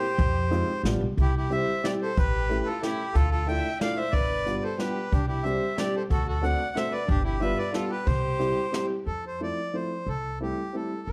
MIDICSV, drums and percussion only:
0, 0, Header, 1, 2, 480
1, 0, Start_track
1, 0, Key_signature, 0, "major"
1, 0, Tempo, 328228
1, 279, Time_signature, 3, 2, 24, 8
1, 11798, Tempo, 334076
1, 16189, End_track
2, 0, Start_track
2, 0, Title_t, "Drums"
2, 272, Note_on_c, 9, 42, 50
2, 276, Note_on_c, 9, 36, 85
2, 418, Note_off_c, 9, 42, 0
2, 423, Note_off_c, 9, 36, 0
2, 765, Note_on_c, 9, 42, 48
2, 911, Note_off_c, 9, 42, 0
2, 1245, Note_on_c, 9, 38, 66
2, 1245, Note_on_c, 9, 42, 49
2, 1392, Note_off_c, 9, 38, 0
2, 1392, Note_off_c, 9, 42, 0
2, 1725, Note_on_c, 9, 42, 40
2, 1726, Note_on_c, 9, 36, 72
2, 1871, Note_off_c, 9, 42, 0
2, 1872, Note_off_c, 9, 36, 0
2, 2214, Note_on_c, 9, 42, 38
2, 2361, Note_off_c, 9, 42, 0
2, 2701, Note_on_c, 9, 38, 62
2, 2701, Note_on_c, 9, 42, 37
2, 2848, Note_off_c, 9, 38, 0
2, 2848, Note_off_c, 9, 42, 0
2, 3180, Note_on_c, 9, 36, 81
2, 3181, Note_on_c, 9, 42, 41
2, 3326, Note_off_c, 9, 36, 0
2, 3327, Note_off_c, 9, 42, 0
2, 3668, Note_on_c, 9, 42, 41
2, 3814, Note_off_c, 9, 42, 0
2, 4142, Note_on_c, 9, 38, 65
2, 4142, Note_on_c, 9, 42, 45
2, 4288, Note_off_c, 9, 38, 0
2, 4288, Note_off_c, 9, 42, 0
2, 4609, Note_on_c, 9, 42, 54
2, 4614, Note_on_c, 9, 36, 74
2, 4755, Note_off_c, 9, 42, 0
2, 4760, Note_off_c, 9, 36, 0
2, 5094, Note_on_c, 9, 42, 40
2, 5240, Note_off_c, 9, 42, 0
2, 5573, Note_on_c, 9, 38, 64
2, 5573, Note_on_c, 9, 42, 40
2, 5719, Note_off_c, 9, 38, 0
2, 5719, Note_off_c, 9, 42, 0
2, 6047, Note_on_c, 9, 36, 76
2, 6051, Note_on_c, 9, 42, 40
2, 6193, Note_off_c, 9, 36, 0
2, 6197, Note_off_c, 9, 42, 0
2, 6533, Note_on_c, 9, 42, 45
2, 6679, Note_off_c, 9, 42, 0
2, 7012, Note_on_c, 9, 38, 50
2, 7012, Note_on_c, 9, 42, 42
2, 7159, Note_off_c, 9, 38, 0
2, 7159, Note_off_c, 9, 42, 0
2, 7495, Note_on_c, 9, 36, 76
2, 7502, Note_on_c, 9, 42, 45
2, 7642, Note_off_c, 9, 36, 0
2, 7648, Note_off_c, 9, 42, 0
2, 7979, Note_on_c, 9, 42, 41
2, 8126, Note_off_c, 9, 42, 0
2, 8454, Note_on_c, 9, 38, 68
2, 8454, Note_on_c, 9, 42, 45
2, 8600, Note_off_c, 9, 38, 0
2, 8600, Note_off_c, 9, 42, 0
2, 8929, Note_on_c, 9, 42, 41
2, 8932, Note_on_c, 9, 36, 78
2, 9075, Note_off_c, 9, 42, 0
2, 9079, Note_off_c, 9, 36, 0
2, 9414, Note_on_c, 9, 42, 42
2, 9561, Note_off_c, 9, 42, 0
2, 9900, Note_on_c, 9, 38, 61
2, 9900, Note_on_c, 9, 42, 39
2, 10046, Note_off_c, 9, 38, 0
2, 10046, Note_off_c, 9, 42, 0
2, 10368, Note_on_c, 9, 36, 80
2, 10372, Note_on_c, 9, 42, 38
2, 10514, Note_off_c, 9, 36, 0
2, 10518, Note_off_c, 9, 42, 0
2, 10849, Note_on_c, 9, 42, 40
2, 10995, Note_off_c, 9, 42, 0
2, 11320, Note_on_c, 9, 38, 50
2, 11320, Note_on_c, 9, 42, 39
2, 11467, Note_off_c, 9, 38, 0
2, 11467, Note_off_c, 9, 42, 0
2, 11801, Note_on_c, 9, 42, 40
2, 11802, Note_on_c, 9, 36, 86
2, 11945, Note_off_c, 9, 36, 0
2, 11945, Note_off_c, 9, 42, 0
2, 12283, Note_on_c, 9, 42, 43
2, 12426, Note_off_c, 9, 42, 0
2, 12762, Note_on_c, 9, 38, 62
2, 12762, Note_on_c, 9, 42, 41
2, 12906, Note_off_c, 9, 38, 0
2, 12906, Note_off_c, 9, 42, 0
2, 16189, End_track
0, 0, End_of_file